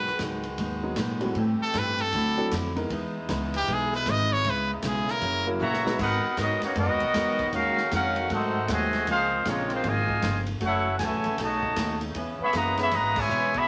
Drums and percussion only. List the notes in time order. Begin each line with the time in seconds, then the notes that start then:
0.07 snare
0.19 kick, snare, hi-hat pedal, ride
0.43 ride
0.58 kick, ride
0.96 kick, snare, hi-hat pedal, ride
1.21 ride
1.35 kick, ride
1.74 kick, snare, hi-hat pedal, ride
1.99 ride
2.13 kick, ride
2.51 kick, snare, hi-hat pedal, ride
2.76 ride
2.90 kick, ride
3.29 kick, snare, hi-hat pedal, ride
3.54 ride
3.68 kick, ride
3.93 snare
4.06 kick, snare, hi-hat pedal, ride
4.44 kick, ride
4.82 kick, snare, hi-hat pedal, ride
5.08 snare
5.22 kick, ride
5.60 hi-hat pedal
5.74 snare
5.87 snare
5.99 kick, crash
6.37 kick, snare, hi-hat pedal, ride
6.62 snare, ride
6.76 kick, ride
7.00 ride
7.14 kick, snare, hi-hat pedal, ride
7.39 kick, ride
7.53 kick, ride
7.78 snare
7.91 kick, snare, hi-hat pedal, ride
8.16 ride
8.30 kick, ride
8.68 kick, snare, hi-hat pedal, ride
8.93 snare, ride
9.07 kick, ride
9.45 kick, snare, hi-hat pedal, ride
9.70 ride
9.84 kick, ride
10.09 kick
10.22 kick, snare, hi-hat pedal, ride
10.46 ride
10.61 kick, ride
10.99 kick, snare, hi-hat pedal, ride
11.24 ride
11.38 kick, snare, ride
11.63 kick
11.76 kick, snare, hi-hat pedal, ride
12.01 ride
12.15 kick, ride
12.53 kick, snare, hi-hat pedal, ride
12.77 snare, ride
12.91 kick, snare, ride
13.16 kick, crash
13.30 hi-hat pedal
13.54 kick, ride